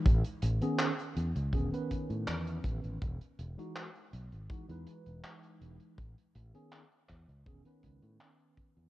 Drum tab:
HH |xxxxxxxxxxxxxxxx|xxxxxxxxxxxxxxxx|xxxxxxxxxxxxxxxx|
CP |----x-------x---|----x-------x---|----x-x-----x---|
BD |o-------o-o---o-|o-------o-------|o-----o-o-o---o-|